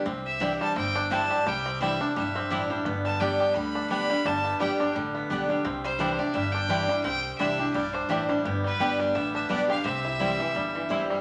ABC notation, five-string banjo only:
X:1
M:4/4
L:1/8
Q:"Swing" 1/4=172
K:C
V:1 name="Five-string banjo"
C2 G G, C D C G | G, C G, D G, C D G, | B, G, D G G, D G G, | G, B, G, D G, B, D G, |
C G, D G G, D G G, | C2 D G G, D G G, | B, G, G G, B, D B, G | C E G, E, G, E, E G, |]